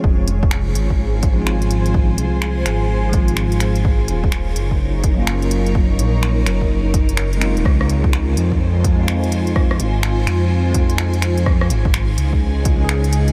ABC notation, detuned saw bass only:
X:1
M:4/4
L:1/16
Q:"Swing 16ths" 1/4=126
K:Fphr
V:1 name="Detuned saw bass" clef=bass
F,,,6 A,,,8- A,,,2- | A,,,2 C,,4 A,,,8- A,,,2- | A,,,2 E,,,4 G,,,8- G,,,2- | G,,,2 B,,,4 G,,,4 G,,,4- G,,, E,,, |
D,,6 F,,8- F,,2- | F,,2 A,,,4 F,,8- F,,2- | F,,2 A,,,4 D,,8- D,,2 |]